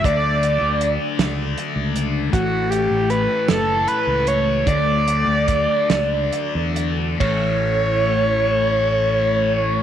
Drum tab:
RD |------|------|------|b-----|
HH |xxxxxx|xxxxxx|xxxxxx|------|
SD |---o--|---o--|---o--|------|
BD |o-----|o-----|o-o---|o-----|